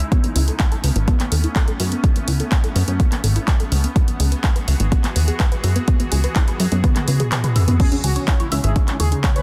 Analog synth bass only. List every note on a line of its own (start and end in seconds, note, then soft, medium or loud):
0.36 0.50 C#2 loud
0.84 0.91 C#2 medium
0.96 1.10 G#1 medium
1.32 1.46 D#2 medium
1.80 1.94 F#2 medium
2.28 2.42 C#2 medium
2.76 2.83 F#2 medium
2.88 3.02 F#2 medium
3.24 3.38 G#1 loud
3.72 3.86 C#2 medium
4.20 4.34 C#2 medium
4.68 4.75 C#2 medium
4.80 4.95 G#1 medium
5.16 5.31 D#2 medium
5.64 5.79 F#2 medium
6.12 6.27 C#2 medium
6.60 6.67 F#2 medium
6.72 6.86 F#2 loud
7.08 7.23 C#2 medium
8.04 8.19 C#2 loud
8.52 8.59 C#2 medium
8.64 8.78 G#1 medium
9.00 9.15 D#2 medium